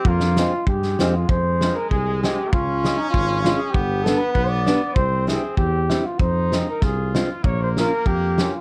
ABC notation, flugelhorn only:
X:1
M:2/4
L:1/16
Q:1/4=97
K:Fm
V:1 name="Flugelhorn"
F4 G3 F | c3 B A2 G2 | F3 E F2 F A | G2 =A =B B =d3 |
c2 A2 G3 F | c3 B A2 z2 | d c B2 G3 F |]